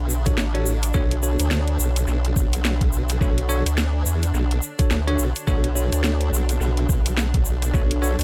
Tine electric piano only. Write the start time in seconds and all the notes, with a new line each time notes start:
0.26 D4 F#4 A4 C#5
0.54 D4 F#4 A4 C#5
0.94 D4 F#4 A4 C#5
1.23 D4 F#4 A4 C#5
3.21 D4 F#4 A4 C#5
3.49 D4 F#4 A4 C#5
4.79 D4 F#4 A4 C#5
5.07 D4 F#4 A4 C#5
5.47 D4 F#4 A4 C#5
5.75 D4 F#4 A4 C#5
7.74 D4 F#4 A4 C#5
8.02 D4 F#4 A4 C#5